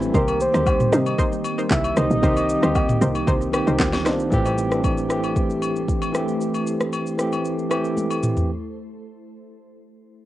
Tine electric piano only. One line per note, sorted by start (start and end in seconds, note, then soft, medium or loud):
0.00 0.17 E3 medium
0.00 0.16 A3 medium
0.00 0.17 B3 medium
0.00 0.15 C4 medium
0.00 0.16 D4 loud
0.00 0.10 E4 loud
0.00 0.16 G4 loud
0.00 0.13 E5 medium
0.00 0.17 G5 medium
0.00 0.16 A5 medium
0.12 0.45 D#3 medium
0.12 0.46 A#3 medium
0.12 0.46 C4 medium
0.12 0.47 G4 loud
0.52 1.37 A#3 medium
0.52 1.38 C4 medium
0.52 1.36 D#4 medium
0.52 1.38 G4 medium
1.95 2.17 D#3 medium
1.95 2.18 A#3 medium
1.95 2.18 C4 medium
1.95 2.19 G4 medium
2.21 2.54 D#3 loud
2.21 2.54 A#3 medium
2.21 2.55 C4 medium
2.21 2.55 G4 loud
2.61 3.35 A#3 medium
2.61 3.36 C4 medium
2.61 3.35 D#4 medium
2.61 3.36 G4 loud
3.52 3.95 D#3 medium
3.52 3.95 A#3 medium
3.52 3.96 C4 medium
3.52 3.97 G4 medium
4.04 4.26 D#3 medium
4.04 4.27 A#3 medium
4.04 4.27 C4 medium
4.04 4.28 D4 loud
4.30 4.62 E3 loud
4.30 4.63 A3 loud
4.30 4.64 C4 loud
4.30 4.64 G4 loud
4.70 5.02 E3 medium
4.70 5.02 A3 medium
4.70 5.03 C4 medium
4.70 5.03 D4 medium
5.08 5.93 E3 medium
5.08 5.93 A3 medium
5.08 5.94 C4 medium
5.08 5.95 G4 loud
6.13 6.97 E3 medium
6.13 6.98 A3 medium
6.13 6.98 C4 medium
6.13 6.99 G4 loud
7.17 7.60 E3 medium
7.17 7.61 A3 medium
7.17 7.61 C4 medium
7.17 7.62 G4 loud
7.69 8.33 E3 medium
7.69 8.34 A3 medium
7.69 8.34 C4 medium
7.69 8.35 G4 loud